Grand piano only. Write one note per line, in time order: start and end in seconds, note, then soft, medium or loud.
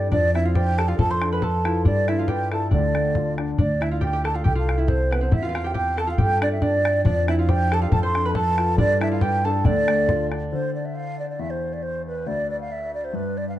0.00 0.11 G4 medium
0.13 0.96 F3 medium
0.36 0.55 C4 medium
0.56 0.78 C5 medium
0.79 0.98 G4 medium
0.99 1.83 F3 medium
1.21 1.41 D4 soft
1.42 1.64 A4 medium
1.65 1.84 F4 medium
1.85 2.69 G3 medium
2.09 2.28 D4 soft
2.29 2.51 B4 medium
2.52 2.71 E4 medium
2.72 3.56 D3 medium
2.95 3.15 A3 soft
3.16 3.38 F4 medium
3.39 3.58 D4 medium
7.05 7.89 F3 medium
7.28 7.48 C4 soft
7.49 7.71 C5 medium
7.72 7.91 G4 medium
7.92 8.76 F3 medium
8.15 8.35 D4 medium
8.35 8.57 A4 medium
8.58 8.78 F4 medium
8.79 9.63 G3 medium
9.02 9.21 D4 medium
9.22 9.44 B4 medium
9.45 9.65 D4 medium
9.65 10.49 D3 medium
9.88 10.08 A3 medium
10.09 10.32 F4 medium
10.32 10.52 D4 medium
10.53 11.37 D3 medium
11.39 12.24 E2 medium
12.26 13.11 D2 medium
13.13 13.59 G2 medium